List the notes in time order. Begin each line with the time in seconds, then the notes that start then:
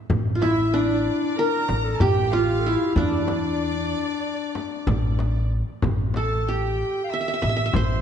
0.10 A1, frame drum, darbuka dum
0.35 F4
0.41 E4 E5, darbuka tek, frame drum
0.74 D4 D5
0.83 C4
0.88 D4
1.37 A#4 A#5
1.68 A1, darbuka tek, frame drum
1.84 A4
1.94 A5
2.00 A1 G4 G5, darbuka dum, frame drum
2.31 F4 F5, darbuka tek, frame drum
2.60 A4
2.66 E4 G4
2.76 F4
2.86 G4
2.95 E2 D4 D5, frame drum, darbuka dum
3.28 darbuka tek, frame drum
4.24 darbuka ka
4.55 darbuka tek, frame drum
4.87 A1, frame drum, darbuka dum
5.19 darbuka tek, frame drum
5.51 darbuka ka
5.82 A1, frame drum, darbuka dum
6.14 A4 A5, darbuka tek, frame drum
6.47 G4 G5, darbuka ka
6.80 darbuka ka
7.04 F5
7.10 E5 E6
7.21 E5
7.28 E5
7.34 E5
7.42 A1 E5, darbuka tek, frame drum
7.49 E5
7.57 E5
7.66 E5
7.74 A1 C5 C6, frame drum, darbuka dum